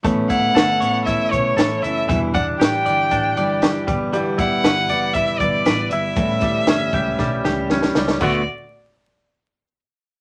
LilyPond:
<<
  \new Staff \with { instrumentName = "Violin" } { \time 4/4 \key d \major \tempo 4 = 118 r8 fis''4. e''8 cis''4 e''8 | e''8 fis''8 g''2~ g''8 r8 | r8 fis''4. e''8 d''4 e''8~ | e''2. r4 |
d''8 r2. r8 | }
  \new Staff \with { instrumentName = "Clean electric guitar" } { \time 4/4 \key d \major a8 e'8 a'8 cis''8 e'8 cis''8 a'8 e'8 | e8 d'8 g'8 d''8 d'8 d''8 g'8 g8 | g8 e'8 b'8 d''8 e'8 d''8 b'8 e'8 | a,8 g8 cis'8 g'8 g8 g'8 cis'8 g8 |
<d a b fis'>8 r2. r8 | }
  \new Staff \with { instrumentName = "Steel-string acoustic guitar" } { \time 4/4 \key d \major <a, e b cis' e'>8 <e b cis' e'>4 <e b cis' e'>4 <e b cis' e'>8 <e b cis' e'>8 <e b cis' e'>8 | <e, b, e g d' e'>8 <e g d' e'>4 <e g d' e'>4 <e g d' e'>8 <e g d' e'>8 <e g b e'>8 | <g, d e g b e'>8 <e g b e'>4 <e g b e'>4 <e g b e'>8 <e g b e'>8 <e g b e'>8 | <a, e g cis' e'>8 <e g cis' e'>4 <e g cis' e'>4 <e g cis' e'>8 <e g cis' e'>8 <e g cis' e'>8 |
<d a b fis'>8 r2. r8 | }
  \new Staff \with { instrumentName = "Fingered electric bass" } { \clef bass \time 4/4 \key d \major a,,4 g,,8 a,,4 b,,8 a,,8 fis,,8 | e,,4 a,,8 g,,8 a,,8 g,,4 g,,8~ | g,,4 g,,8 fis,,4 g,,8 a,,8 g,,8 | a,,4 g,,8 cis,8 b,,8 cis,4 cis,8 |
d,8 r2. r8 | }
  \new DrumStaff \with { instrumentName = "Drums" } \drummode { \time 4/4 <hh bd>8 <hh bd>8 <hh sn>8 hh8 <hh bd>8 <hh bd>8 <hh sn>8 hh8 | <hh bd>8 <hh bd>8 <hh sn>8 hh8 <hh bd>8 hh8 <hh sn>8 <hh bd>8 | hh8 <hh bd>8 <hh sn>8 hh8 <hh bd>8 <hh bd>8 <hh sn>8 hh8 | <hh bd>8 <hh bd>8 <hh sn>8 <hh bd>8 <bd sn>8 sn8 sn16 sn16 sn16 sn16 |
<cymc bd>4 r4 r4 r4 | }
>>